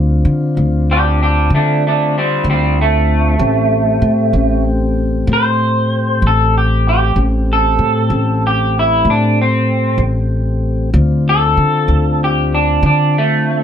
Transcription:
Already playing: upright bass D2, tonewheel organ C4 D4 F4
0.25 upright bass D3
0.57 upright bass D2
0.91 clean electric guitar D4 G4
1.23 clean electric guitar D4 G4
1.50 upright bass D3
1.55 clean electric guitar A3 D4
1.87 clean electric guitar A3 D4
2.18 clean electric guitar G3 C4
2.44 upright bass D2
2.50 clean electric guitar G3 C4
2.81 clean electric guitar A3
3.39 upright bass A1, tonewheel organ A3 C4 G4
4.02 upright bass A2
4.33 upright bass A1
5.27 upright bass A2
5.33 clean electric guitar C5
6.22 upright bass A1
6.27 clean electric guitar A4
6.58 clean electric guitar G4
6.89 clean electric guitar G4
7.16 upright bass A1, tonewheel organ A3 C4 G4
7.53 clean electric guitar A4
7.79 upright bass A2
8.10 upright bass A1
8.47 clean electric guitar G4
8.79 clean electric guitar E4
9.05 upright bass A2
9.10 clean electric guitar D4
9.41 clean electric guitar C4
9.98 upright bass A1
10.93 upright bass D2, tonewheel organ C4 D4 F4
11.29 clean electric guitar A4
11.57 upright bass D3
11.88 upright bass D2
12.24 clean electric guitar G4
12.55 clean electric guitar D4
12.83 upright bass D3, clean electric guitar D4
13.18 clean electric guitar A3

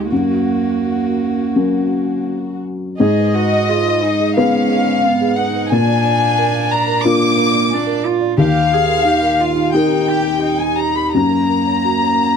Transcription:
Already playing: cello G#3, felt piano D#4 G4 A#4, violin section G4
0.11 felt piano F#2, cello A#3, violin section F#4
1.56 felt piano F#3 C#4 A#4
2.99 felt piano G#2, cello G#4, marimba G#4, violin section D#5
3.18 marimba B4
3.34 cello F#4, marimba B4
3.52 marimba D#5
3.69 cello F4, marimba G#4
3.86 marimba D#5
4.03 cello D#4, marimba G#5
4.20 marimba G#4
4.37 felt piano B3 G#4 B4, cello C#4, marimba B4, violin section F5
4.70 marimba G#4
4.88 marimba B4
5.04 cello B3, marimba G#5
5.21 marimba G#4
5.38 cello D#4, marimba B4, violin section F#5
5.55 marimba B4
5.70 felt piano A#2, cello D4, marimba A#4, violin section G#5
5.88 marimba D5
6.05 marimba D5
6.22 marimba F5
6.38 marimba A#4
6.54 marimba F5
6.71 marimba G#5, violin section A#5
6.87 marimba A#4
7.03 cello A#3, felt piano D4 F4 A#4, marimba D5, violin section D6
7.37 marimba A#4
7.53 marimba D5
7.70 cello D4, marimba G#5
7.87 marimba A#4
8.04 cello F4, marimba D5
8.21 marimba D5
8.38 felt piano D#2, marimba D#4, cello G4, violin section F5
8.55 marimba G4
8.71 marimba G4, cello G#4
8.88 marimba A#4
9.05 marimba D#4, cello G4
9.22 marimba A#4
9.39 cello F4, marimba D#5
9.56 marimba D#4
9.73 cello D#4, felt piano D#4 G4 A#4, marimba G4, violin section G5
10.08 marimba D#4, cello G4
10.25 marimba G4
10.43 cello D#4, marimba D#5
10.60 marimba D#4, violin section G#5
10.77 marimba G4, violin section A#5
10.95 marimba G4, violin section B5
11.13 felt piano F#2, cello A#3, marimba F#4, violin section A#5
11.31 marimba A#4
11.50 marimba A#4
11.67 marimba C#5
11.85 marimba F#4
12.03 marimba C#5
12.21 marimba F#5

